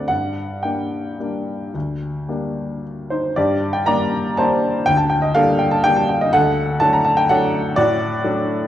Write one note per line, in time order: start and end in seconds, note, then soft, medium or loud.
0.00 0.12 D2 medium
0.00 0.12 A3 soft
0.00 0.12 C4 soft
0.00 0.12 D4 soft
0.00 0.12 D5 medium
0.00 0.08 F#5 loud
0.08 0.63 G2 medium
0.08 0.63 F#5 loud
0.63 1.16 A#3 soft
0.63 1.16 D4 soft
0.63 2.83 G5 medium
1.19 1.70 G3 soft
1.19 1.70 A#3 soft
1.19 1.70 D4 soft
1.74 2.27 D2 medium
2.28 3.32 G3 soft
2.28 3.32 A#3 soft
2.28 3.33 D4 soft
3.10 3.35 D#4 medium
3.10 3.36 C5 medium
3.36 3.85 G2 medium
3.36 3.71 G4 medium
3.36 3.73 D5 medium
3.73 3.86 G5 medium
3.86 4.33 G3 medium
3.86 4.34 A#3 medium
3.86 4.34 D4 medium
3.86 4.34 D5 medium
3.86 4.37 A#5 loud
4.37 4.83 G3 medium
4.37 4.83 A#3 medium
4.37 4.83 D4 medium
4.37 4.84 C5 medium
4.37 4.86 A5 loud
4.86 5.33 D2 medium
4.86 4.98 G5 loud
4.97 5.09 A5 medium
5.10 5.22 G5 medium
5.22 5.34 D#5 medium
5.35 5.81 G3 medium
5.35 5.81 A#3 medium
5.35 5.81 D4 medium
5.35 5.58 A4 medium
5.35 5.59 F5 loud
5.59 5.71 G5 medium
5.71 5.84 A5 medium
5.84 6.29 G3 medium
5.84 6.29 A#3 medium
5.84 6.29 D4 medium
5.84 5.96 G5 loud
5.96 6.09 A5 medium
6.09 6.21 G5 medium
6.21 6.33 D#5 medium
6.33 6.80 D2 medium
6.33 6.78 A4 medium
6.33 6.80 F#5 loud
6.80 7.26 F#3 medium
6.80 7.26 A3 medium
6.80 7.26 D4 medium
6.80 6.92 A5 loud
6.93 7.05 A#5 medium
7.05 7.17 A5 medium
7.17 7.29 G5 loud
7.29 7.73 F#3 medium
7.29 7.73 A3 medium
7.29 7.73 D4 medium
7.29 7.74 A4 medium
7.29 7.76 F#5 loud
7.76 8.22 A2 medium
7.76 8.67 F#4 medium
7.76 8.67 D5 loud
8.24 8.67 F#3 medium
8.24 8.67 A3 medium
8.24 8.67 D4 medium